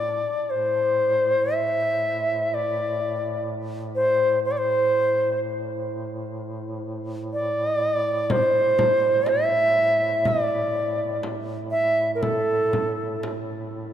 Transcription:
Already playing: duduk A2, bansuri D5
0.48 duduk A2, bansuri C5
1.54 bansuri E5
2.54 bansuri D5
3.95 bansuri C5
4.45 bansuri C5
4.51 bansuri D5
4.58 bansuri C5
7.33 bansuri D5
8.30 bansuri C5, frame drum
8.79 frame drum
9.26 bansuri E5, frame drum
10.25 bansuri D5, frame drum
11.23 frame drum
11.71 bansuri E5
12.15 bansuri A#4
12.22 bansuri A4, frame drum
12.73 frame drum
13.23 frame drum

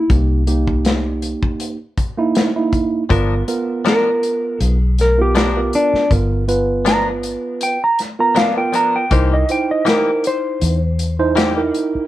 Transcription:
0.10 fingered electric bass C2, tine electric piano A#3 D#4 G4, kick, closed hi-hat
0.47 tine electric piano A#3 D#4 G4, closed hi-hat
0.67 kick
0.85 snare, closed hi-hat
1.22 closed hi-hat
1.43 kick
1.60 closed hi-hat
1.97 kick, closed hi-hat
2.17 tine electric piano A#3 D#4 E4
2.35 snare, closed hi-hat
2.56 tine electric piano A#3 D#4 E4
2.73 kick, closed hi-hat
3.10 fingered electric bass G1, clean electric guitar F3 B3 D4 A#4, tine electric piano B3 F4 A#4, kick, closed hi-hat
3.48 tine electric piano B3 F4 A#4, closed hi-hat
3.85 clean electric guitar F3 B3 D4 A#4, electric slide guitar A#4, snare, closed hi-hat
4.23 closed hi-hat
4.61 fingered electric bass B1, electric slide guitar G#4, closed hi-hat
4.98 electric slide guitar A#4, snare, closed hi-hat
5.18 tine electric piano B3 F4 A#4, electric slide guitar G4
5.35 clean electric guitar F3 B3 D4 A#4, electric slide guitar G4, snare, closed hi-hat
5.56 tine electric piano B3 F4 A#4
5.73 electric slide guitar D4, closed hi-hat
5.93 muted fingered electric bass stroke, snare
6.11 fingered electric bass G1, tine electric piano B3 F4 A#4, kick, closed hi-hat
6.48 tine electric piano B3 F4 B4, closed hi-hat
6.85 clean electric guitar F3 B3 D4 A#4, electric slide guitar A#5, snare, closed hi-hat
7.23 closed hi-hat
7.61 electric slide guitar G5, closed hi-hat
7.84 electric slide guitar A#5
7.99 snare, closed hi-hat
8.19 tine electric piano B3 F4 A#4, electric slide guitar A#5
8.35 clean electric guitar F3 B3 D4 A#4, electric slide guitar F5, snare, closed hi-hat
8.57 tine electric piano B3 F4 A#4, electric slide guitar G5
8.72 clean electric guitar F3 B3 D4 A#4, electric slide guitar A#5, closed hi-hat
8.96 electric slide guitar G5
9.11 fingered electric bass C2, clean electric guitar E3 A#3 D#4 G4, tine electric piano D#4 E4 A#4, electric slide guitar C5, kick, closed hi-hat
9.34 electric slide guitar D#5
9.49 tine electric piano D#4 E4 C5, electric slide guitar G5, closed hi-hat
9.71 electric slide guitar D#5
9.85 clean electric guitar E3 A#3 D#4 G4, electric slide guitar A#4, snare, closed hi-hat
10.24 electric slide guitar C5, closed hi-hat
10.61 fingered electric bass E2, closed hi-hat
10.99 closed hi-hat
11.19 tine electric piano D#4 E4 C5
11.36 clean electric guitar E3 A#3 D#4 G4, snare, closed hi-hat
11.56 tine electric piano D#4 E4 A#4
11.74 closed hi-hat
11.95 muted fingered electric bass stroke

